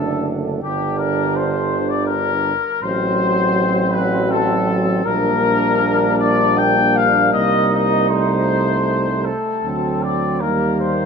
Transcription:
0.00 0.60 F#1 soft
0.00 0.60 D3 soft
0.00 0.63 A3 soft
0.00 0.60 D4 soft
0.00 0.27 A4 soft
0.62 2.53 G1 soft
0.62 2.52 D3 soft
0.62 2.52 G3 soft
0.62 2.52 D4 soft
0.62 0.97 G4 medium
0.97 1.34 A#4 medium
1.36 1.91 C5 medium
1.89 2.08 D5 medium
2.06 2.81 A#4 medium
2.82 5.01 A1 soft
2.82 5.01 F#3 soft
2.82 5.01 C4 soft
2.82 3.93 C5 medium
3.92 4.30 B4 medium
4.30 5.05 A4 medium
5.05 7.30 A#1 soft
5.05 9.31 G3 soft
5.05 8.11 A#3 soft
5.05 7.30 D4 soft
5.05 6.19 A#4 medium
6.18 6.56 D5 medium
6.57 6.96 G5 medium
6.95 7.34 F5 medium
7.32 9.31 C2 soft
7.32 9.31 D#4 soft
7.32 7.71 D#5 medium
7.73 8.10 D#5 medium
8.09 10.13 A3 soft
8.09 9.21 C5 medium
9.24 10.03 A4 soft
9.63 10.43 D2 soft
9.63 10.43 F#3 soft
9.63 10.42 C4 soft
10.03 10.41 D5 soft
10.40 11.05 D#2 soft
10.40 11.05 G3 soft
10.40 11.05 A#3 soft
10.40 10.79 A#4 soft
10.78 11.05 C5 medium

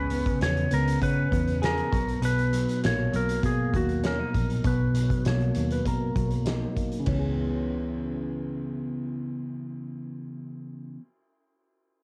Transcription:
0.00 0.30 C#2 medium
0.00 1.91 C#3 medium
0.00 0.11 B3 soft
0.00 0.40 C#4 soft
0.00 1.61 G#4 medium
0.00 0.42 B4 medium
0.10 0.70 B3 medium
0.10 closed hi-hat medium
0.26 kick medium
0.26 closed hi-hat soft
0.41 0.66 E2 medium
0.41 1.01 C#4 medium
0.41 0.73 C#5 medium
0.41 snare loud
0.41 closed hi-hat medium
0.57 closed hi-hat soft
0.71 0.96 C#2 medium
0.71 1.31 B3 medium
0.71 1.03 A#4 medium
0.71 closed hi-hat medium
0.88 closed hi-hat medium
1.01 1.26 C#3 medium
1.01 1.98 C#4 medium
1.01 1.59 B4 medium
1.01 kick medium
1.01 closed hi-hat medium
1.31 1.81 E2 medium
1.31 2.83 B3 medium
1.31 kick medium
1.31 closed hi-hat medium
1.48 closed hi-hat soft
1.62 1.98 G#4 medium
1.62 2.25 A#4 medium
1.62 snare medium
1.62 closed hi-hat medium
1.78 closed hi-hat soft
1.92 2.65 B1 medium
1.92 2.21 B2 medium
1.92 kick medium
1.92 closed hi-hat medium
2.09 closed hi-hat soft
2.22 4.63 B2 medium
2.22 2.80 B4 medium
2.22 closed hi-hat medium
2.38 closed hi-hat soft
2.53 3.11 F#3 medium
2.53 closed hi-hat medium
2.68 closed hi-hat soft
2.84 3.08 A#1 medium
2.84 3.42 A#3 medium
2.84 3.16 C#5 medium
2.84 snare loud
2.84 closed hi-hat medium
3.12 3.38 B1 medium
3.12 3.72 F#3 medium
3.12 3.43 A#4 medium
3.12 closed hi-hat medium
3.29 closed hi-hat medium
3.43 3.75 B2 medium
3.43 4.34 A#3 medium
3.43 3.76 G#4 medium
3.43 kick medium
3.43 closed hi-hat medium
3.74 4.22 D#2 medium
3.74 4.93 F#3 soft
3.74 4.03 F#4 medium
3.74 kick medium
3.74 closed hi-hat medium
3.89 closed hi-hat soft
4.04 4.19 C#4 medium
4.04 4.67 A#4 medium
4.04 snare loud
4.04 closed hi-hat medium
4.19 6.44 D#4 medium
4.34 4.59 A#1 medium
4.34 kick medium
4.34 closed hi-hat medium
4.50 closed hi-hat soft
4.64 5.13 B1 medium
4.64 6.99 B2 medium
4.64 5.28 B4 medium
4.64 kick loud
4.64 closed hi-hat medium
4.94 5.54 F#3 soft
4.94 closed hi-hat medium
5.10 kick medium
5.10 closed hi-hat soft
5.25 5.50 B1 medium
5.25 5.84 A#3 soft
5.25 5.73 C#5 medium
5.25 snare loud
5.25 closed hi-hat medium
5.40 closed hi-hat soft
5.55 5.80 D#2 medium
5.55 6.15 F#3 medium
5.55 closed hi-hat medium
5.71 5.87 B4 medium
5.71 closed hi-hat medium
5.85 6.10 B2 medium
5.85 6.74 A#3 medium
5.85 6.74 A#4 medium
5.85 kick medium
5.85 closed hi-hat medium
6.16 6.64 B1 medium
6.16 7.05 F#3 soft
6.16 kick medium
6.16 closed hi-hat medium
6.31 closed hi-hat soft
6.45 7.12 D#4 medium
6.45 snare loud
6.45 closed hi-hat medium
6.75 7.10 A#3 soft
6.75 kick medium
6.75 closed hi-hat medium
6.92 closed hi-hat soft
7.00 10.96 C#3 medium
7.06 10.96 C#2 medium
7.06 10.99 E3 medium
7.06 10.26 C#5 medium
7.06 kick medium
7.06 ride medium
7.11 11.01 B3 medium
7.15 11.04 C#4 medium
7.19 11.06 G#4 medium

